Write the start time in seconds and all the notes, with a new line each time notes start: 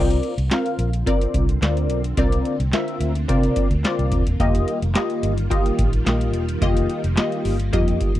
Already playing: C2 D3 A#3 C4 F4 A#4 D5
0.10 closed hi-hat
0.23 closed hi-hat
0.38 C2, closed hi-hat
0.51 C4 F4 A#4 F5, snare, clap, closed hi-hat
0.66 closed hi-hat
0.79 A#1, closed hi-hat
0.93 closed hi-hat
1.06 C4 F4 A#4 D5, kick, closed hi-hat
1.21 closed hi-hat
1.34 C2, kick, closed hi-hat
1.49 closed hi-hat
1.62 D2 C4 F4 A#4 D5, snare, clap, closed hi-hat
1.77 closed hi-hat
1.90 B1, closed hi-hat
2.04 closed hi-hat
2.17 C2 C4 F4 A#4 D5, kick, closed hi-hat
2.32 closed hi-hat
2.45 closed hi-hat
2.60 C2, closed hi-hat
2.73 C4 F4 A#4 E5, snare, clap, closed hi-hat
2.88 closed hi-hat
3.00 D2, closed hi-hat
3.15 closed hi-hat
3.28 C3 C4 F4 A#4 D5, kick, closed hi-hat
3.43 closed hi-hat
3.56 kick, closed hi-hat
3.71 D2, closed hi-hat
3.84 C4 F4 A#4 D5, snare, clap, closed hi-hat
3.99 C2, closed hi-hat
4.12 D#1, kick, closed hi-hat
4.27 E1, closed hi-hat
4.40 F1 D#3 G3 A#3 F4 G4 D#5, kick, closed hi-hat
4.55 closed hi-hat
4.68 closed hi-hat
4.82 F1, closed hi-hat
4.95 A#3 F4 G4 D#5, snare, clap, closed hi-hat
5.10 closed hi-hat
5.23 G1, closed hi-hat
5.38 closed hi-hat
5.50 A#3 F4 G4 D#5, kick, closed hi-hat
5.66 closed hi-hat
5.79 A1, kick, closed hi-hat
5.93 closed hi-hat
6.06 A#1 A#3 F4 G4 D#5, snare, clap, closed hi-hat
6.21 closed hi-hat
6.34 E1, closed hi-hat
6.49 closed hi-hat
6.61 F1 A#3 F4 G4 D#5, kick, closed hi-hat
6.77 closed hi-hat
6.89 closed hi-hat
7.04 F1, closed hi-hat
7.17 A#3 F4 G4 D#5, snare, clap, closed hi-hat
7.32 closed hi-hat
7.45 G1, open hi-hat
7.60 closed hi-hat
7.73 F2 A#3 F4 G4 D#5, kick, closed hi-hat
7.88 closed hi-hat
8.01 kick, closed hi-hat
8.15 G1, closed hi-hat